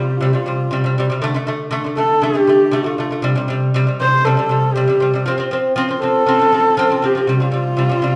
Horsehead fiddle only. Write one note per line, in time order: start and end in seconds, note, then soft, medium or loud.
0.02 0.11 F4 medium
0.10 0.19 G4 medium
0.17 0.27 F4 medium
0.26 0.37 G4 medium
0.35 0.73 F4 medium
1.97 2.25 A4 medium
2.23 2.77 G4 medium
2.76 3.25 F4 medium
4.01 4.27 C5 loud
4.25 4.75 A4 medium
4.73 5.25 G4 medium
6.00 7.07 A4 loud
7.05 7.30 G4 medium
7.29 8.16 F4 medium